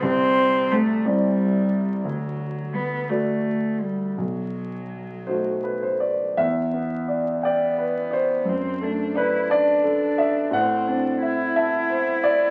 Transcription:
<<
  \new Staff \with { instrumentName = "Grand piano" } { \time 6/8 \key e \minor \tempo 4. = 58 << { r2. | r2. | r4. c''8 b'16 c''16 d''8 | e''4. d''4 c''8~ |
c''4 b'8 d''4 e''8 | fis''4. e''4 d''8 | } \\ { c,4. <c' e' d''>4. | d,4. <a fis' d''>4. | b,,4. <a dis' fis'>4. | e,8 b8 d''8 g''8 b'8 d''8 |
fis,8 a8 d''8 a''8 a'8 d''8 | a,8 c'8 e''8 a''8 c''8 e''8 | } >> }
  \new Staff \with { instrumentName = "Cello" } { \time 6/8 \key e \minor c'4 a8 g4. | fis4 b8 a4 g8 | fis2~ fis8 r8 | r4. b4. |
c'8 d'8 e'8 d'4. | c'8 d'8 e'2 | }
>>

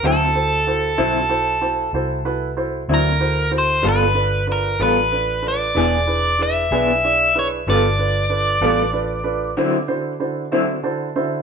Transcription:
<<
  \new Staff \with { instrumentName = "Overdriven electric guitar" } { \time 12/8 \key d \dorian \tempo 4. = 63 a'2. r4. bes'4 c''8 | b'4 bes'8 b'4 d''4. e''4. cis''8 | d''2. r2. | }
  \new Staff \with { instrumentName = "Grand piano" } { \time 12/8 \key d \dorian <e' fis' a' c''>8 <e' fis' a' c''>8 <e' fis' a' c''>8 <e' fis' a' c''>8 <e' fis' a' c''>8 <e' fis' a' c''>8 <e' fis' a' c''>8 <e' fis' a' b'>8 <e' fis' a' c''>8 <e' fis' a' d''>8 <e' fis' a' c''>8 <e' fis' a' c''>8 | <d' f' a' b'>8 <d' f' a' b'>8 <d' f' a' b'>8 <d' f' a' b'>8 <d' f' a' b'>8 <d' f' a' b'>8 <d' e' gis' b'>8 <d' e' gis' b'>8 <d' e' gis' b'>8 <d' e' gis' b'>8 <d' e' gis' d''>8 <d' e' gis' b'>8 | <d' f' a' b'>8 <d' f' a' b'>8 <d' f' a' b'>8 <d' f' a' b'>8 <d' f' a' b'>8 <d' f' a' b'>8 <d e' fis' a' c''>8 <d e' fis' a' c''>8 <d e' fis' a' c''>8 <d e' fis' a' c''>8 <d e' fis' a' c'' a''>8 <d e' fis' a' c'' e''>8 | }
  \new Staff \with { instrumentName = "Clean electric guitar" } { \time 12/8 \key d \dorian <d fis c' e'>8 r4 <d fis c' e'>8 r2 r8 <d fis c' e'>8 r4 | <g b f' a'>8 r4 <g b f' a'>8 r4 <e b d' gis'>8 r4 <e b d' gis'>8 r4 | <g b f' a'>8 r4 <g b f' a'>8 r4 <d fis c' e'>8 r4 <d fis c' e'>8 r4 | }
  \new Staff \with { instrumentName = "Fingered electric bass" } { \clef bass \time 12/8 \key d \dorian d,4. b,,4. c,4. d,4. | g,,4. a,,4. e,,4. b,,4. | g,,4. a,,4. r2. | }
>>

